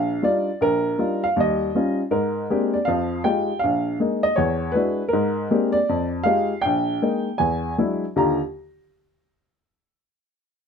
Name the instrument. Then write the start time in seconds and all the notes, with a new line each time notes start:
upright piano
Already playing: A#1 F5
0.22 G3 D4 D#4 F4 D5
0.61 A#1 A#4
0.98 G3 D4 D#4 F4
1.24 F5
1.36 D#2 G3 D#5
1.75 G3 C#4 D#4 F4
2.11 G#2 A#4
2.50 G#3 A#3 C4 D4 G4
2.74 D5
2.85 F2 F3 F5
3.24 G#3 D#4 F4 G4 G5
3.59 F5
3.64 A#1
4.00 G#3 A#3 D#4
4.23 D#5
4.36 E2 C#5
4.72 G#3 B4
4.76 D4 E4 F#4
5.08 A#4
5.13 G#2
5.51 G#3 A#3 C4 D4 G4
5.72 D5
5.89 F2
6.23 G#3 D#4 F4 G4 F5
6.62 A#1 G5
7.02 G#3 A#3 D#4
7.38 E2 G#5
7.78 F#3 G#3 D4 E4
8.16 D#2 D3 F4 G4 A#5